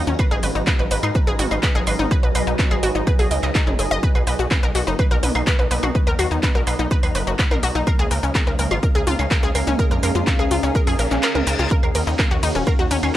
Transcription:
Already playing: D#3 F#3 A#3 C#4 F4 F#4 D#5 A#5, downlifter
0.07 D#2 C#4, shaker
0.19 G#3 D#4 A#4 B4, kick, claves, shaker
0.31 G#1 G#4, shaker
0.43 G#1 B4, open hi-hat, shaker
0.55 G#1 D#4, shaker
0.67 B4, kick, clap, mid tom, claves, shaker
0.79 G#1 B4, shaker
0.91 G#1 B4, open hi-hat, shaker
1.03 G#2 D#4, claves, shaker
1.15 B4, kick, shaker
1.27 G#1 G#4, shaker
1.38 G#1 F#4 G#5, open hi-hat, mid tom, shaker
1.51 G#1 D#4, claves, shaker
1.63 B4, kick, clap, shaker
1.75 G#1 G#4, shaker
1.87 G#1 B4, open hi-hat, claves, shaker
1.99 G#1 D#4, mid tom, shaker
2.11 G#4 B4, kick, shaker
2.23 B1 B4, shaker
2.35 B1 B4, open hi-hat, claves, shaker
2.47 B1 D#4, shaker
2.59 B4, kick, clap, mid tom, shaker
2.71 G#1 G#4, claves, shaker
2.83 G#1 F#4, open hi-hat, shaker
2.95 G#1 D#4, shaker
3.07 B4, kick, shaker
3.19 B1 G#4, open hi-hat, claves, shaker
3.31 C#2 D#5, open hi-hat, shaker
3.43 C#2 D#5, clap, shaker
3.55 D#4, kick, clap, claves, shaker
3.67 F#1 G#4, mid tom, shaker
3.79 F#1 G#4, open hi-hat, shaker
3.91 F#1 D#5, shaker
4.03 A#3 B3 B4, kick, shaker
4.15 B1 B4, claves, shaker
4.27 B1 B4 A#5, open hi-hat, shaker
4.39 B1 F#4, shaker
4.51 B4, kick, clap, mid tom, claves, shaker
4.63 B1 A#4, shaker
4.75 B1 F#4, open hi-hat, shaker
4.87 F#1 D#4, shaker
4.99 B4, kick, claves, shaker
5.11 B1 A#4, shaker
5.23 B1 B4, open hi-hat, mid tom, shaker
5.35 B1 D#4, claves, shaker
5.47 B4, kick, clap, shaker
5.59 B1 B4, shaker
5.71 B1 B4, open hi-hat, shaker
5.83 B1 F#4, mid tom, claves, shaker
5.95 B4, kick, shaker
6.07 D#2 A#4, shaker
6.19 D#2 F#4, open hi-hat, claves, shaker
6.31 D#2 D#4, shaker
6.43 B4, kick, clap, mid tom, shaker
6.55 B1 A#4, shaker
6.67 B1 B4, open hi-hat, claves, shaker
6.79 B1 D#4, shaker
6.91 B4, kick, shaker
7.03 D#2 B4, open hi-hat, claves, shaker
7.15 F#1 B4, open hi-hat, shaker
7.27 F#1 F#4, shaker
7.39 B4, kick, clap, shaker
7.51 B1 A#4, mid tom, claves, shaker
7.63 B1 F#4, open hi-hat, shaker
7.75 B1 D#4, shaker
7.87 C#3 G#3 C#4 A#4 F5, kick, claves, shaker
7.99 C#2 G#4, shaker
8.11 C#2 A#4, open hi-hat, shaker
8.16 F5
8.23 C#2 C#4, shaker
8.35 A#4, kick, clap, mid tom, claves, shaker
8.41 G#4
8.47 C#2 A#4, shaker
8.59 C#2 A#4, open hi-hat, shaker
8.71 G#1 F4, claves, shaker
8.83 A#4, kick, shaker
8.95 C#2 G#4, shaker
9.07 C#2 F4, open hi-hat, mid tom, shaker
9.19 C#2 C#4, claves, shaker
9.31 A#4, kick, clap, shaker
9.43 C#2 G#4, shaker
9.55 C#2 A#4, open hi-hat, claves, shaker
9.67 C#2 C#4, mid tom, shaker
9.79 A#4, kick, shaker
9.91 F2 A#4, shaker
10.03 F2 A#4, open hi-hat, claves, shaker
10.15 F2 F4, shaker
10.27 A#4, kick, clap, mid tom, shaker
10.39 C#2 G#4, claves, shaker
10.51 C#2 F4, open hi-hat, shaker
10.63 C#2 C#4, shaker
10.75 A#4, kick, reverse cymbal, shaker
10.87 F2 G#4, open hi-hat, claves, shaker
10.99 A#1 A#4, open hi-hat, shaker
11.11 A#1 C#4, clap, shaker
11.23 A#4, clap, claves, shaker
11.35 C#2 A#4, mid tom, shaker
11.47 C#2 A#4, open hi-hat, shaker
11.59 C#2 F4, shaker
11.71 D#3 C#4 F#4 A#4, kick, shaker
11.83 D#2 A#4, claves, shaker
11.95 D#2 A#4, open hi-hat, ride, shaker
12.07 D#2 D#4 F#4, shaker
12.19 A#4 D#5, kick, clap, mid tom, claves, shaker
12.31 D#2 F#4, shaker
12.43 D#2 D#4, open hi-hat, ride, shaker
12.55 D#1 C#4, shaker
12.67 A#4, kick, claves, shaker
12.79 D#2 F#4, shaker
12.91 D#2 C#4, open hi-hat, mid tom, ride, shaker
13.03 D#2 C#4, claves, shaker

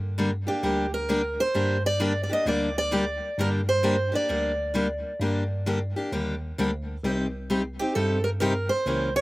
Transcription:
Already playing: G2
0.18 D3 G3 A#3 D4 G4
0.47 A#3 D4 G4
0.63 D2 D3 G3 A#3 D4 G4
0.94 A#4
1.09 D3 G3 A#3 D4 G4
1.40 C5
1.54 G2 D3 G3 A#3 D4 G4
1.86 D5
2.00 D3 G3 A#3 D4 G4
2.23 D5
2.29 A#3 D4 G4 D#5
2.46 D2 D3 G3 A#3 D4 G4 D5
2.78 D5
2.91 D3 G3 A#3 D4 G4
3.38 G2 D3 G3 A#3 D4 G4 A#4
3.69 C5
3.83 D3 G3 A#3 D4 G4
4.12 A#3 D4 G4 D5
4.29 D2 D3 G3 A#3 D4 G4
4.74 D3 G3 A#3 D4 G4
5.20 G2 D3 G3 A#3 D4 G4
5.66 D3 G3 A#3 D4 G4
5.96 A#3 D4 G4
6.12 D#2 D3 G3 A#3 D4 G4
6.58 D2 D3 G3 A#3 D4 G4
7.04 C2 C3 G3 C4 D#4 G4
7.50 C3 G3 C4 D#4 G4
7.79 C4 D#4 G4
7.95 G2 C3 G3 C4 D#4 G4 A4
8.24 A#4
8.40 C3 G3 C4 D#4 G4 A#4
8.69 C5
8.86 C#2 C#3 E3 A#3 C#4 G4
9.16 C#5

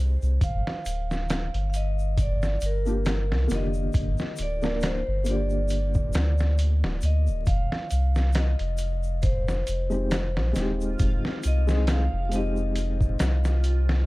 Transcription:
Already playing: C2 G#3 C4 D#4 G4
0.22 C2, shaker
0.41 G1 F5, kick, closed hi-hat, shaker
0.67 snare
0.85 D1, closed hi-hat, shaker
1.11 snare, shaker
1.29 snare, closed hi-hat, shaker
1.54 G1, closed hi-hat
1.70 F5
1.74 D#5, closed hi-hat, shaker
1.99 shaker
2.17 kick, closed hi-hat, shaker
2.22 D5
2.42 snare, shaker
2.61 G1, closed hi-hat, shaker
2.66 A#4
2.86 A#3 D4 F4 G4, shaker
3.05 snare, closed hi-hat, shaker
3.31 C2, snare
3.48 F1 D3 A#3, closed hi-hat, shaker
3.52 F4 G4 D#5, snare
3.73 shaker
3.93 G1, kick, closed hi-hat, shaker
4.18 snare, shaker
4.36 D1, closed hi-hat, shaker
4.42 D5
4.62 A#3 D4 F4 A#4, snare, shaker
4.81 snare, closed hi-hat, shaker
4.86 C5
5.08 G1
5.24 D3 A#3, closed hi-hat, shaker
5.28 F4 G4 D5
5.50 shaker
5.68 closed hi-hat, shaker
5.94 kick, shaker
6.13 D2, snare, closed hi-hat, shaker
6.38 snare, shaker
6.58 closed hi-hat, shaker
6.84 D1, snare
7.01 D2 D#5, closed hi-hat, shaker
7.27 D1, shaker
7.46 F1 F4 F5, kick, closed hi-hat, shaker
7.72 snare
7.91 C2, closed hi-hat, shaker
8.15 snare, shaker
8.33 D#5, snare, closed hi-hat, shaker
8.59 F1, closed hi-hat
8.78 closed hi-hat, shaker
9.03 shaker
9.22 C5, kick, closed hi-hat, shaker
9.48 snare, shaker
9.67 F1, closed hi-hat, shaker
9.90 G#3 C4 D#4 G4, shaker
10.11 snare, closed hi-hat, shaker
10.37 A#1, snare
10.53 D#1 G#3 C4, snare, closed hi-hat, shaker
10.57 D#4 G4
10.81 shaker
10.99 F1, kick, closed hi-hat, shaker
11.25 snare
11.43 C2, closed hi-hat, shaker
11.47 D#5
11.67 G#3 C4 D#4 G#4, snare, shaker
11.87 snare, closed hi-hat, shaker
11.92 F5
12.13 F1
12.29 G#3 C4, closed hi-hat, shaker
12.33 D#4 G4 D#5
12.56 shaker
12.76 closed hi-hat, shaker
13.01 kick, shaker
13.19 C2, snare, closed hi-hat, shaker
13.44 snare, shaker
13.64 closed hi-hat, shaker
13.89 snare

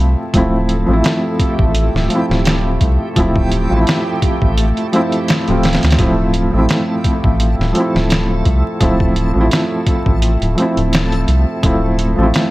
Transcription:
Already playing: F3 A3 C4 E4 A4
0.00 C2
0.33 D1 F3 A3 C4 E4 G4, kick, closed hi-hat
0.69 closed hi-hat
0.86 A1 F3 A3
0.91 C4 E4
1.04 snare, closed hi-hat
1.40 kick, closed hi-hat
1.59 A1, kick
1.75 closed hi-hat
1.94 D1, snare
2.08 F3 A3, closed hi-hat
2.13 C4 E4
2.29 D1, snare
2.45 snare, closed hi-hat
2.81 C2, kick, closed hi-hat
3.16 D1 F3 A3 C4 E4, kick, closed hi-hat
3.36 kick
3.52 closed hi-hat
3.69 A1 F3 A3
3.74 C4 E4
3.87 snare, closed hi-hat
4.22 kick, closed hi-hat
4.42 A1, kick
4.58 closed hi-hat
4.77 closed hi-hat
4.92 F3 A3 C4 E4, closed hi-hat
5.12 closed hi-hat
5.28 snare, closed hi-hat
5.48 D1 F3 A3 C4 F4, closed hi-hat
5.63 snare, closed hi-hat
5.73 snare, closed hi-hat
5.83 D2, snare, closed hi-hat
5.90 snare, closed hi-hat
5.99 D1 F3 A3 C4 E4 A4, kick, closed hi-hat
6.34 closed hi-hat
6.51 A1 F3 A3
6.56 C4 E4
6.69 snare, closed hi-hat
7.04 kick, closed hi-hat
7.24 A1, kick
7.40 closed hi-hat
7.59 D1, snare
7.73 F3 A3, closed hi-hat
7.77 C4 E4
7.95 D1, snare
8.10 snare, closed hi-hat
8.45 C2, kick, closed hi-hat
8.80 D1 F3 A3 C4 E4, kick, closed hi-hat
9.00 kick
9.16 closed hi-hat
9.33 A1 F3 A3
9.38 C4 E4
9.51 snare, closed hi-hat
9.87 kick, closed hi-hat
10.06 A1, kick
10.22 closed hi-hat
10.41 D1, closed hi-hat
10.55 F3 A3, closed hi-hat
10.60 C4 E4
10.77 D1, closed hi-hat
10.93 snare, closed hi-hat
11.12 closed hi-hat
11.28 C2, closed hi-hat
11.62 D1 F3 A3 C4 E4 B4, kick, closed hi-hat
11.99 closed hi-hat
12.16 A1 F3 A3
12.21 C4 E4
12.34 snare, closed hi-hat

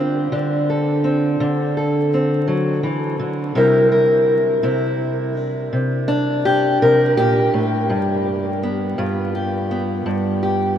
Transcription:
Already playing: D3 C4 D4
0.32 D3 D4
0.70 A4
1.04 C4
1.40 D3
1.77 A4
2.14 C4
2.48 F#3
2.83 E3
3.19 D3
3.55 C3 G3 E4 A#4
3.92 A#4
4.63 C3 E4
5.37 D4
5.73 C3
6.08 D4
6.45 G4
6.82 C3 A#4
7.17 A#2 G4
7.53 A2
7.90 G2
8.63 B3
8.98 G2 F4
9.35 G4
9.71 B3
10.06 G2
10.43 G4

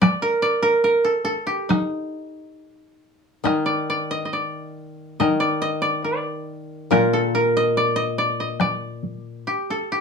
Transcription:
Already playing: D4
0.02 D5, taiko rim, taiko high
0.22 A#4
0.42 D5
0.62 A#4
0.84 A#4
1.05 A4
1.25 A4
1.47 G4
1.69 D#4, taiko rim, taiko high
3.44 D#3 D#5, taiko rim, taiko high
3.66 D5
3.90 D5
4.11 D#5
4.25 D#5
4.33 D5
5.20 D#3 D#5, taiko rim, taiko high
5.40 D5
5.62 D#5
5.82 D5
6.04 D5
6.91 A#2 A#4, taiko rim, taiko high
7.13 A4
7.35 A#4
7.57 D#5
7.77 D5
7.96 D#5
8.18 D5
8.40 D#5
8.60 D5, taiko rim, taiko high
9.03 taiko high
9.47 G4
9.70 A4
9.92 G4

